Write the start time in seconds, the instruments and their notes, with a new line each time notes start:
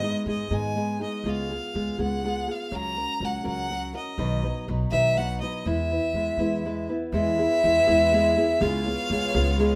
Already playing: violin D#5
0.03 nylon-string guitar G#3 B3 D#4 G#4
0.26 upright bass G#2, nylon-string guitar G#3 B3 D#4 G#4, violin D#5
0.50 upright bass G#2, nylon-string guitar G#2 D#3 G#3 B3 D#4 G#4, violin G#5
0.76 nylon-string guitar G#3 B3 D#4 G#4
1.00 nylon-string guitar G#3 B3 D#4 G#4, violin D#5
1.24 upright bass C#2, nylon-string guitar C#3 G#3 B3 F4 G#4
1.29 violin F5
1.51 nylon-string guitar B3 F4 G#4
1.74 upright bass C#2, nylon-string guitar G#3 B3 F4 G#4
1.98 upright bass C#2, nylon-string guitar C#3 G#3 B3 F4 G#4, violin F#5
2.24 nylon-string guitar G#3 B3 F4 G#4
2.48 nylon-string guitar B3 F4 G#4, violin F5
2.71 upright bass C#2, nylon-string guitar C#3 F#3 C#4 F#4 A#4, violin A#5
2.97 nylon-string guitar C#4 F#4 A#4
3.20 upright bass C#2, nylon-string guitar F#3 C#4 F#4 A#4
3.24 violin F#5
3.44 upright bass C#2, nylon-string guitar C#3 F#3 C#4 F#4 A#4, violin F#5
3.70 nylon-string guitar F#3 C#4 F#4 A#4
3.94 nylon-string guitar C#4 F#4 A#4, violin D#5
4.18 upright bass B1, nylon-string guitar B2 D#3 F#3 B3 D#4 B4
4.43 nylon-string guitar F#3 B3 D#4 B4
4.68 upright bass B1, nylon-string guitar F#3 B3 D#4 B4
4.91 upright bass B1, nylon-string guitar B2 D#3 F#3 B3 D#4 B4, violin E5
5.17 nylon-string guitar F#3 B3 D#4 B4, violin F#5
5.41 nylon-string guitar F#3 B3 D#4 B4, violin D#5
5.65 upright bass E2, nylon-string guitar E3 G#3 B3 E4 B4, violin E5
5.91 nylon-string guitar B3 E4 B4
6.13 upright bass E2, nylon-string guitar G#3 B3 E4 B4
6.37 upright bass E2, nylon-string guitar E3 G#3 B3 E4 B4
6.65 nylon-string guitar G#3 B3 E4 B4
6.89 nylon-string guitar B3 E4 B4
7.11 upright bass E2, nylon-string guitar E3 G#3 B3 E4 G#4, violin section G#3 E4 B4, violin E5
7.39 nylon-string guitar B3 E4 G#4
7.63 upright bass E2, nylon-string guitar G#3 B3 E4 G#4
7.87 upright bass E2, nylon-string guitar E3 G#3 B3 E4 G#4
8.13 nylon-string guitar G#3 B3 E4 G#4
8.37 nylon-string guitar B3 E4 G#4
8.61 upright bass C#2, nylon-string guitar C#3 G#3 B3 F4 G#4, violin section B3 F4 C#5, violin F5
8.86 nylon-string guitar B3 F4 G#4
9.10 upright bass C#2, nylon-string guitar G#3 B3 F4 G#4
9.34 upright bass C#2, nylon-string guitar C#3 G#3 B3 F4 G#4
9.59 nylon-string guitar G#3 B3 F4 G#4